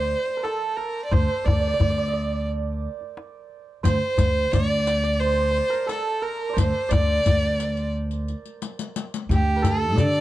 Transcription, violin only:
0.00 0.45 C5 medium
0.44 0.78 A4 medium
0.77 1.04 A#4 medium
1.05 1.14 D5 medium
1.13 1.48 C5 medium
1.47 2.48 D5 medium
3.85 4.54 C5 medium
4.52 5.21 D5 loud
5.20 5.88 C5 loud
5.90 6.24 A4 medium
6.23 6.60 A#4 medium
6.59 6.93 C5 medium
6.92 7.94 D5 loud
9.34 9.68 G4 medium
9.67 10.01 A4 medium
10.00 10.21 D5 medium

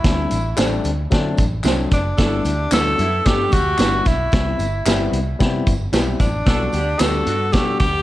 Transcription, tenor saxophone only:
0.00 0.81 E4 medium
1.94 2.69 D4 medium
2.74 3.29 A4 loud
3.27 3.54 G4 medium
3.53 4.08 F#4 loud
4.07 5.13 E4 medium
6.20 7.01 D4 medium
7.00 7.55 A4 loud
7.53 7.79 G4 medium
7.80 8.02 G4 loud

